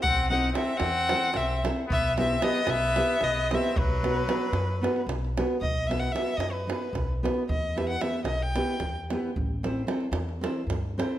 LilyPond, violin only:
\new Staff \with { instrumentName = "Violin" } { \time 7/8 \tempo 4 = 113 fis''8 fis''8 e''8 fis''4 e''8 r8 | e''8 e''8 dis''8 e''4 dis''8 e''8 | b'2~ b'8 r4 | dis''8 e''16 fis''16 e''8 dis''16 b'4 r8. |
dis''8 e''16 fis''16 e''8 dis''16 g''4 r8. | r2. r8 | }